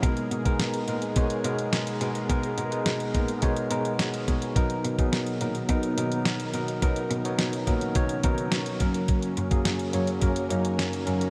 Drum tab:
HH |xxxxxxxxxxxxxxxx|xxxxxxxxxxxxxxxx|xxxxxxxxxxxxxxxx|xxxxxxxxxxxxxxxx|
SD |----o-------o---|----o-------o---|----o-------o---|----o-------o---|
BD |o--o----o-------|o-----o-o-----o-|o--o----o-------|o-----o-o-o---o-|

HH |xxxxxxxxxxxxxxxx|
SD |----o-------o---|
BD |o--o----o-------|